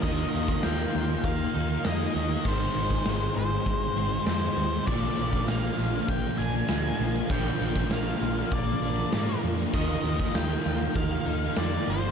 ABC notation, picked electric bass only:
X:1
M:4/4
L:1/8
Q:1/4=99
K:Bbmix
V:1 name="Picked electric bass" clef=bass
E,, E,, E,, E,, E,, E,, F,, E,, | A,,, A,,, A,,, A,,, A,,, A,,, F,, E,, | B,,, B,,, B,,, B,,, B,,, B,,, D,, B,,, | B,,, B,,, B,,, B,,, B,,, B,,, A,, F,, |
E,, E,, E,, E,, E,, E,, F,, G,,, |]